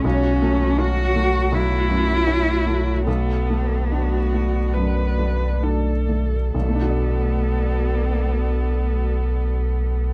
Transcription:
<<
  \new Staff \with { instrumentName = "Viola" } { \time 4/4 \key b \minor \tempo 4 = 70 fis'4 fis'4 fis'2 | a'4 fis'4 b'4 a'4 | a'1 | }
  \new Staff \with { instrumentName = "Ambient pad" } { \time 4/4 \key b \minor << { cis''1 | d''1 | d''1 | } \\ { <a fis'>1~ | <a fis'>1 | <a fis'>1 | } >> }
  \new Staff \with { instrumentName = "Cello" } { \time 4/4 \key b \minor cis'4 fis'4 e'2 | b2. r4 | b1 | }
  \new Staff \with { instrumentName = "Felt piano" } { \time 4/4 \key b \minor b,,8 a8 cis'8 a8 b,,8 fis,8 cis'8 a8 | b,,8 a8 d'8 a8 fis,8 a8 d'8 a8 | <b,, b, a d' fis' d''>1 | }
  \new Staff \with { instrumentName = "Sub bass" } { \clef bass \time 4/4 \key b \minor b,,1~ | b,,1 | b,,1 | }
>>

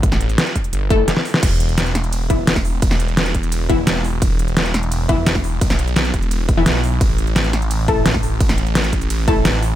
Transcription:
<<
  \new Staff \with { instrumentName = "Synth stab" } { \time 4/4 \key e \minor \tempo 4 = 172 r2 r8 <a e' a'>16 r4 r16 | r2 r8 <e b e'>16 r4 r16 | r2 r8 <e b e'>16 r4 r16 | r2 r8 <e b e'>16 r4 r16 |
r2 r8. <e b e'>16 r4 | r2 r8 <a e' a'>16 r4 r16 | r2 r8 <a e' a'>16 r4 r16 | }
  \new Staff \with { instrumentName = "Detuned saw bass" } { \clef bass \time 4/4 \key e \minor a,,4 r4 g,,4 r4 | e,,1 | e,,1 | e,,1 |
b,,4. e,,4. b,,4 | a,,1 | a,,1 | }
  \new DrumStaff \with { instrumentName = "Drums" } \drummode { \time 4/4 <hh bd>16 sn16 hh16 hh16 <hh sn>16 hh16 <hh bd>16 hh16 hh8 <hh bd>8 <hh sn>16 sn16 hho16 sn16 | <cymc hh bd cymr>8 hh16 hh16 <hh cymr sn>16 hh16 <hh sn>16 hh16 <hh cymr>8 <hh bd>8 <hh cymr sn>16 <bd sn>16 hho8 | <hh bd cymr>16 sn16 hh16 hh16 <hh cymr sn>16 hh16 <hh bd>16 hh16 <hh cymr>8 <hh bd>8 <hh cymr sn>8 hho8 | <hh bd cymr>8 hh16 hh16 <hh cymr sn>16 hh16 <hh sn>16 hh16 <hh cymr>8 <hh bd>8 <hh cymr sn>16 <bd sn>16 hho8 |
<hh bd cymr>16 sn16 hh16 hh16 <hh cymr sn>16 hh16 <hh bd>16 hh16 <hh cymr>8 <hh bd>8 <hh cymr sn>8 hho8 | <hh bd cymr>8 hh16 hh16 <hh cymr sn>16 hh16 <hh sn>16 hh16 <hh cymr>8 <hh bd>8 <hh cymr sn>16 <bd sn>16 hho8 | <hh bd cymr>16 sn16 hh16 hh16 <hh cymr sn>16 hh16 <hh bd>16 hh16 <hh cymr>8 <hh bd>8 <hh cymr sn>8 hho8 | }
>>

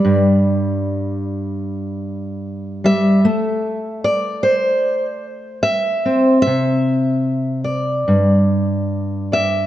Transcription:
\new Staff \with { instrumentName = "Steel-string acoustic guitar" } { \time 4/4 \key a \dorian \tempo 4 = 75 << { <b' d''>4. r2 e''8~ | e''4 d''8 c''4. e''4 | e''4. d''2 <d'' e''>8 | } \\ { <g, g>2.~ <g, g>8 g8 | a2.~ a8 c'8 | c2 g,2 | } >> }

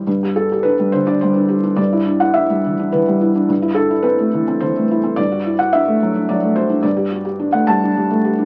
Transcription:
\new Staff \with { instrumentName = "Felt piano" } { \time 3/4 \key g \major \tempo 4 = 107 << { r8 a'8 b'8 c''16 d''16 c''4 | d''8. fis''16 e''4 b'4 | r8 a'8 b'4 c''4 | d''8. fis''16 e''4 d''8 c''8 |
d''4~ d''16 fis''16 a''4. | } \\ { g,16 g'16 fis'16 g'16 d'16 g16 d16 d'16 g16 d'16 g'16 d'16 | g,16 e'16 d'16 e'16 d'16 g16 e16 d'16 e16 g16 e'16 d'16 | g,16 e'16 d'16 e'16 c'16 a16 e16 c'16 e16 a16 e'16 c'16 | g,16 fis'16 e'16 fis'16 d'16 a16 fis16 d'16 fis16 a16 fis'16 d'16 |
g,16 g'16 fis'16 g'16 d'16 a16 g16 d'16 g16 a16 g'16 d'16 | } >> }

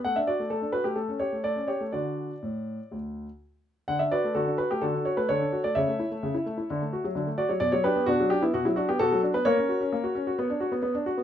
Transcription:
<<
  \new Staff \with { instrumentName = "Grand piano" } { \time 4/4 \key d \major \tempo 4 = 130 fis''16 e''16 d''8 a'8 b'16 g'16 a'8 cis''8 d''8 cis''8 | d''2.~ d''8 r8 | fis''16 e''16 <b' d''>8 <fis' a'>8 b'16 g'16 <fis' a'>8 cis''16 b'16 <a' cis''>8. d''16 | <cis'' e''>2.~ <cis'' e''>8 d''16 cis''16 |
d''16 cis''16 <g' b'>8 <d' fis'>8 g'16 e'16 fis'16 e'16 fis'16 g'16 <fis' a'>8. b'16 | <ais' cis''>2.~ <ais' cis''>8 r8 | }
  \new Staff \with { instrumentName = "Grand piano" } { \time 4/4 \key d \major a16 d'16 fis'16 a16 a16 d'16 fis'16 a16 a16 cis'16 g'16 a16 a16 cis'16 g'16 a16 | <d d' fis'>4 a,4 d,4 r4 | d16 d'16 fis'16 a16 d16 d'16 fis'16 a16 d16 d'16 fis'16 a16 d16 d'16 fis'16 a16 | cis16 a16 e'16 a16 cis16 e'16 a16 e'16 d16 a16 fis'16 fis16 d16 a16 fis'16 fis16 |
b,16 fis16 d'16 b16 b,16 fis16 d'16 b16 b,16 fis16 d'16 b16 b,16 fis16 d'16 b16 | ais16 cis'16 fis'16 cis'16 ais16 fis'16 cis'16 fis'16 b16 d'16 fis'16 b16 b16 d'16 fis'16 b16 | }
>>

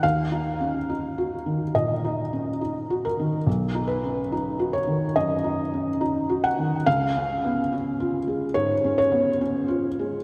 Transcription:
\new Staff \with { instrumentName = "Felt piano" } { \time 4/4 \key ees \minor \tempo 4 = 70 << { f''2 ees''4. bes'8 | r8 b'4 des''8 dis''4. fis''8 | f''2 des''8 des''4. | } \\ { \tuplet 3/2 { <ees, ees>8 ees'8 des'8 ees'8 ges'8 ees8 bes,8 ees'8 des'8 ees'8 ges'8 ees8 } | \tuplet 3/2 { b,,8 dis'8 des'8 dis'8 fis'8 dis8 fis,8 dis'8 des'8 dis'8 fis'8 dis8 } | \tuplet 3/2 { des,8 des'8 ces'8 des'8 f'8 aes8 aes,8 des'8 ces'8 des'8 f'8 aes8 } | } >> }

